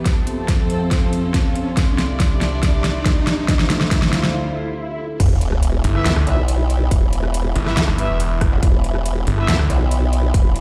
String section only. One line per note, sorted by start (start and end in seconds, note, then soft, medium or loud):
0.06 1.75 F2 medium
0.06 1.75 F3 medium
0.06 1.75 A4 medium
0.06 1.75 C5 medium
1.77 3.47 C2 medium
1.77 3.47 C3 medium
1.77 3.47 E4 medium
1.77 3.47 D5 medium
3.49 5.18 D2 medium
3.49 5.18 D3 medium
3.49 5.18 F4 medium
3.49 5.18 C5 medium